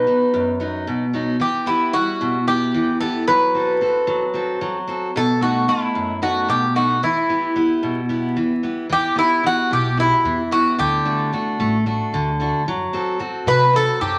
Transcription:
0.00 1.09 B4 medium
0.07 0.50 F#3 soft
0.07 0.50 B3 soft
0.07 0.50 D#4 soft
0.34 0.85 F#2 medium
0.60 1.03 F#3 soft
0.60 1.03 B3 soft
0.60 1.03 D#4 soft
0.87 1.39 B2 medium
1.13 1.35 F#3 soft
1.13 1.35 B3 soft
1.13 1.36 D#4 soft
1.40 1.92 E3 medium
1.40 1.68 G4 medium
1.66 1.92 B3 soft
1.66 1.93 E4 soft
1.66 1.95 E4 medium
1.66 2.10 G4 soft
1.93 2.37 G3 soft
1.93 2.37 B3 soft
1.93 2.37 E4 soft
1.93 2.47 F#4 medium
2.21 2.73 B2 medium
2.47 2.90 B3 soft
2.47 2.91 E4 soft
2.47 3.00 G4 medium
2.47 2.91 G4 soft
2.74 3.26 E3 medium
3.01 3.22 B3 soft
3.01 3.23 E4 soft
3.01 3.23 G4 soft
3.01 3.26 A4 medium
3.28 3.80 F#3 medium
3.28 4.84 B4 medium
3.54 3.80 C4 soft
3.54 3.80 F#4 soft
3.54 3.81 A4 soft
3.81 4.24 C4 soft
3.81 4.24 F#4 soft
3.81 4.25 A4 soft
4.07 4.60 F#3 medium
4.34 4.77 C4 soft
4.34 4.78 F#4 soft
4.34 4.78 A4 soft
4.61 5.13 F#3 medium
4.88 5.09 C4 soft
4.88 5.10 F#4 soft
4.88 5.10 A4 soft
5.16 5.68 B2 medium
5.16 5.41 A4 medium
5.41 5.67 A3 soft
5.41 5.67 B3 soft
5.41 5.85 D#4 soft
5.41 5.70 F#4 medium
5.68 6.11 A3 soft
5.68 6.12 B3 soft
5.68 6.19 E4 medium
5.68 6.12 D#5 soft
5.95 6.48 F#2 medium
6.22 6.65 A3 soft
6.22 6.65 B3 soft
6.22 6.66 D#4 soft
6.22 6.49 F#4 medium
6.48 7.01 B2 medium
6.48 6.75 G4 medium
6.75 6.97 A3 soft
6.75 6.98 B3 soft
6.75 6.98 D#4 soft
6.75 7.01 F#4 medium
7.03 7.55 E3 medium
7.03 8.60 E4 medium
7.29 7.55 B3 soft
7.29 7.55 E4 soft
7.29 7.56 G4 soft
7.56 7.99 B3 soft
7.56 7.99 E4 soft
7.56 8.00 G4 soft
7.83 8.35 B2 medium
8.09 8.53 B3 soft
8.09 8.53 E4 soft
8.09 8.53 G4 soft
8.37 8.88 E3 medium
8.63 8.85 B3 soft
8.63 8.85 E4 soft
8.63 8.86 G4 soft
8.89 9.10 E2 medium
8.89 9.42 E3 medium
8.89 9.17 G4 medium
9.16 9.42 B3 soft
9.16 9.42 E4 soft
9.16 9.46 E4 medium
9.16 9.43 G4 soft
9.43 9.87 B3 soft
9.43 9.87 E4 soft
9.43 9.71 F#4 medium
9.43 9.87 G4 soft
9.71 10.09 B1 medium
9.71 10.23 B2 medium
9.71 9.99 G4 medium
9.97 10.41 B3 soft
9.97 10.41 E4 soft
9.97 10.49 E4 medium
9.97 10.41 G4 soft
10.24 10.62 E2 medium
10.24 10.77 E3 medium
10.51 10.73 B3 soft
10.51 10.73 E4 soft
10.51 10.77 F#4 medium
10.51 10.74 G4 soft
10.78 10.97 D2 medium
10.78 11.31 D3 medium
10.78 11.29 G4 medium
11.05 11.32 A3 soft
11.05 11.32 D4 soft
11.05 11.32 F#4 soft
11.33 11.59 A3 soft
11.33 11.76 D4 soft
11.33 11.76 F#4 soft
11.59 11.97 A1 medium
11.59 11.85 A3 medium
11.86 12.29 A3 soft
11.86 12.29 D4 soft
11.86 12.30 F#4 medium
12.13 12.50 D2 medium
12.13 12.66 D3 medium
12.40 12.61 A3 soft
12.40 12.62 D4 soft
12.40 12.62 F#4 soft
12.66 12.85 F#2 medium
12.66 13.20 F#3 medium
12.93 13.18 C4 soft
12.93 13.19 F#4 soft
12.93 13.19 A4 soft
13.19 13.63 C4 soft
13.19 13.63 F#4 soft
13.19 13.63 A4 soft
13.46 13.84 C3 medium
13.46 13.99 F#3 medium
13.46 13.75 B4 loud
13.73 14.17 C4 soft
13.73 14.17 F#4 soft
13.73 14.17 A4 soft
13.73 14.00 A4 medium
14.01 14.19 F#2 medium
14.01 14.19 F#3 medium
14.01 14.19 G4 medium

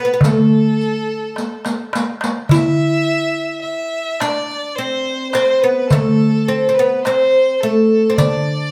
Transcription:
0.00 0.23 B4 medium
0.05 0.12 B3 medium
0.14 0.20 B3 medium
0.21 1.92 A4 medium
0.21 riq medium
0.21 darbuka dum medium
0.25 1.90 A3 medium
0.81 riq soft
1.36 riq soft
1.36 darbuka tek soft
1.65 riq medium
1.65 darbuka ka medium
1.93 riq medium
1.93 darbuka tek medium
2.21 riq medium
2.21 darbuka ka medium
2.49 4.21 E4 medium
2.49 3.59 E5 medium
2.49 darbuka dum medium
2.54 riq medium
3.61 4.21 E5 medium
3.61 darbuka ka soft
4.20 4.79 D4 medium
4.20 4.77 D5 medium
4.20 riq medium
4.20 darbuka tek medium
4.51 riq soft
4.76 5.34 C4 medium
4.76 5.31 C5 medium
4.76 riq soft
4.76 darbuka ka soft
5.32 5.63 C4 medium
5.32 5.63 C5 medium
5.32 riq soft
5.32 darbuka tek medium
5.61 5.92 B3 medium
5.61 5.90 B4 medium
5.88 6.76 A4 medium
5.88 riq medium
5.88 darbuka dum medium
5.93 6.50 A3 medium
6.48 6.68 C4 medium
6.48 darbuka ka soft
6.69 6.75 C4 medium
6.74 7.03 B4 medium
6.79 7.04 B3 medium
7.03 7.63 C4 medium
7.03 7.62 C5 medium
7.03 riq soft
7.03 darbuka tek medium
7.61 8.13 A3 medium
7.61 8.16 A4 medium
8.10 8.17 C4 medium
8.17 8.71 D4 medium
8.17 8.71 D5 medium
8.17 riq medium
8.17 darbuka dum medium

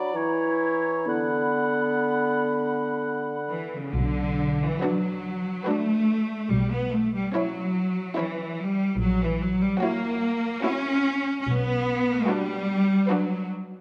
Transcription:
0.00 0.16 F#3 soft
0.00 0.17 D5 soft
0.00 0.13 B5 soft
0.12 1.07 E3 soft
0.12 1.08 E4 medium
0.12 0.57 A#5 soft
0.16 1.08 C#5 soft
0.58 1.05 A#5 soft
1.06 3.57 D3 soft
1.06 3.47 B3 soft
1.06 3.57 F#5 soft
1.06 3.60 B5 soft
3.48 3.70 E3 soft
3.73 3.95 C#3 soft
3.94 4.65 B1 medium
3.94 4.61 D3 medium
4.62 4.83 E3 medium
4.82 5.68 F#3 medium
4.82 5.47 D4 soft
4.82 5.47 F#4 soft
4.82 5.46 B4 soft
5.65 6.50 A3 medium
5.65 6.30 D4 soft
5.65 6.29 F#4 soft
5.65 6.28 B4 soft
6.50 7.18 B1 medium
6.50 6.71 G3 medium
6.73 6.93 B3 medium
6.93 7.14 A3 medium
7.14 7.34 G3 medium
7.34 8.16 F#3 medium
7.34 7.96 C#4 soft
7.34 7.97 E4 soft
7.34 7.96 C#5 soft
8.16 8.59 E3 medium
8.16 8.80 C#4 soft
8.16 8.79 E4 soft
8.16 8.80 C#5 soft
8.60 9.00 G3 medium
8.98 9.63 A#1 medium
8.98 9.20 F#3 medium
9.22 9.41 E3 medium
9.41 9.60 F#3 medium
9.61 9.81 G3 medium
9.80 10.61 A#3 medium
9.80 10.42 E4 soft
9.80 10.41 F#4 soft
9.80 10.42 C#5 soft
10.62 11.39 C#4 medium
10.62 11.27 E4 soft
10.62 11.26 F#4 soft
10.62 11.26 C#5 soft
11.40 11.47 C#4 soft
11.46 12.11 B1 medium
11.46 12.28 B3 medium
12.28 13.09 G3 medium
12.28 12.89 D4 soft
12.28 12.88 F#4 soft
12.28 12.88 B4 soft
13.09 13.49 F#3 medium
13.09 13.70 D4 soft
13.09 13.70 F#4 soft
13.09 13.70 B4 medium

